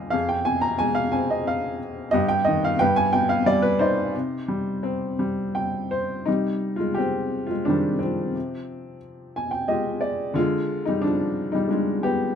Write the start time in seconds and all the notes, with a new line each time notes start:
Already playing: D#2 A#2 D3 G3 D5 D#5 F5 G5 G#5 A#5 C6 D6
0.10 F2 G#4 F5
0.29 G5
0.45 C3 G#5
0.61 A#5
0.79 G#3 G#5
0.95 F5
1.12 C4 G#5
1.30 D#5
1.47 F5
2.11 G2 G4 D#5
2.28 G5
2.45 D#3 D#5
2.64 F5
2.79 G2 B4 G5
2.96 G#5
3.13 B2 G5
3.29 F5
3.46 G3 D5
3.62 B4
3.79 D#4 C5 D5
4.14 C3
4.48 G3
4.83 C4
5.19 G3
5.55 G5
5.91 C5
6.26 C3 G3 D#4
6.76 G#3 F4
6.94 C4 G4
7.46 F4
7.51 G#3
7.65 D#3 C4 D4
7.70 G3
7.99 C4
8.03 F3
8.35 C3
9.36 G#5
9.51 G5
9.68 G#3 F4 G4 D#5
10.01 D5
10.34 D3 G#3 F4
10.85 G3 D#4
11.02 F3 D4
11.52 G3 D#4
11.67 G#3 D4 F4
12.03 B3 G4